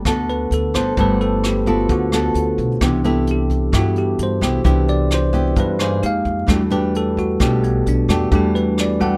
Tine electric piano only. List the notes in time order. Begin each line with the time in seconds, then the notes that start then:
Already playing: A3 B3
0.30 B4
0.54 A4
0.75 C5
0.98 A3 B3 B4
1.21 A4
1.46 G4
1.68 F4
1.92 F#4
2.81 E3 B3 D4
3.06 A4
3.31 G4
3.77 F#4
3.98 G4
4.23 C5
4.65 E3 D4 B4
4.89 D5
5.14 C5
5.60 B4
5.81 C5
6.03 G#3 A#3 D#4 G4 F5
6.48 G3 A3 D4 F#4
6.72 B4
6.97 A4
7.19 F#4
7.43 G4
7.64 B3
7.89 D4
8.10 F#4
8.31 G3 A3 D4 G4
8.55 B4
8.81 D5
9.00 G3 A3 D4 F#4 F#5